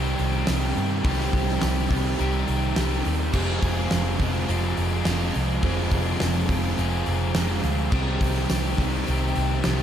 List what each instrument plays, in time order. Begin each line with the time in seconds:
Already playing: picked electric bass C2, overdriven electric guitar C3 D#3 G3 C4 G4
0.19 picked electric bass C2, open hi-hat
0.47 picked electric bass C2, overdriven electric guitar C3 D#3 G3 C4 G4, snare, open hi-hat, tambourine
0.77 picked electric bass G2, open hi-hat
1.03 picked electric bass C2, overdriven electric guitar C3 D#3 G3 C4 G4, kick, open hi-hat
1.19 snare
1.33 picked electric bass C2, kick, open hi-hat
1.48 snare
1.61 picked electric bass C2, snare, open hi-hat, tambourine
1.91 picked electric bass C2, overdriven electric guitar C3 D#3 G3 C4 G4, kick, open hi-hat
2.18 picked electric bass C2, overdriven electric guitar C3 D#3 G3 C4 G4, open hi-hat
2.48 picked electric bass C2, open hi-hat
2.75 picked electric bass C2, overdriven electric guitar C3 D#3 G3 C4 G4, snare, open hi-hat, tambourine
3.05 picked electric bass D#2, open hi-hat
3.33 picked electric bass F1, overdriven electric guitar F2 C3 F3 G#3 C4 F4 G#4, kick, crash
3.62 picked electric bass F1, kick, open hi-hat
3.91 picked electric bass F1, snare, open hi-hat, tambourine
4.19 picked electric bass F1, overdriven electric guitar F3 G#3 C4 F4, kick, open hi-hat
4.47 picked electric bass F1, overdriven electric guitar F2 C3 F3 G#3 C4 G#4, open hi-hat
4.77 picked electric bass F1, open hi-hat
5.04 picked electric bass F1, overdriven electric guitar F3 G#3 C4 F4, snare, open hi-hat, tambourine
5.34 picked electric bass C2, open hi-hat
5.62 picked electric bass F1, overdriven electric guitar F2 C3 F3 G#3 C4 G#4, kick, open hi-hat
5.66 overdriven electric guitar F4
5.91 picked electric bass F1, kick, open hi-hat
6.20 picked electric bass F1, snare, open hi-hat, tambourine
6.49 picked electric bass F1, overdriven electric guitar F3 G#3 C4 F4, kick, open hi-hat
6.77 picked electric bass F1, overdriven electric guitar F2 C3 F3 G#3 C4 G#4, open hi-hat
7.06 picked electric bass F1, open hi-hat
7.35 picked electric bass F1, overdriven electric guitar F3 G#3 C4 F4, snare, open hi-hat, tambourine
7.63 picked electric bass D2, open hi-hat
7.91 picked electric bass C2, overdriven electric guitar C3 D#3 G3 C4 G4, kick, crash
8.21 picked electric bass C2, kick, open hi-hat
8.35 snare
8.50 picked electric bass C2, snare, open hi-hat, tambourine
8.78 picked electric bass C2, overdriven electric guitar C3 D#3 G3 C4 G4, kick, open hi-hat
9.06 picked electric bass C2, overdriven electric guitar C3 D#3 G3 C4 G4, open hi-hat
9.35 picked electric bass C2, open hi-hat
9.64 picked electric bass C2, overdriven electric guitar C3 D#3 G3 C4 G4, snare, open hi-hat, tambourine